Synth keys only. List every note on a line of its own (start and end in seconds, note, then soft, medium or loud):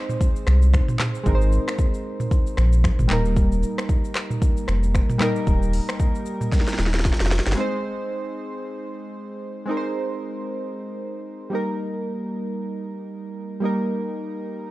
0.00 1.21 G#3 medium
0.00 1.22 C4 medium
0.00 1.22 D#4 medium
0.00 1.23 C5 medium
1.24 3.05 G#3 medium
1.24 3.06 C4 medium
1.24 3.07 D#4 medium
1.28 1.35 A#4 medium
1.35 3.11 C5 medium
3.08 5.15 G3 medium
3.08 5.16 A#3 medium
3.08 5.17 D#4 medium
3.13 5.18 A#4 medium
5.18 7.26 G3 medium
5.18 7.27 A#3 medium
5.18 7.28 D#4 medium
5.23 7.28 A#4 medium
7.55 9.63 G#3 medium
7.55 9.64 C4 medium
7.55 9.65 D#4 medium
7.60 9.65 C5 medium
9.66 11.47 G#3 medium
9.66 11.48 C4 medium
9.66 11.49 D#4 medium
9.71 9.77 A#4 medium
9.77 11.53 C5 medium
11.50 13.58 G3 medium
11.50 13.58 A#3 medium
11.50 13.59 D#4 medium
11.55 13.60 A#4 medium
13.60 14.71 G3 medium
13.60 14.71 A#3 medium
13.60 14.71 D#4 medium
13.65 14.71 A#4 medium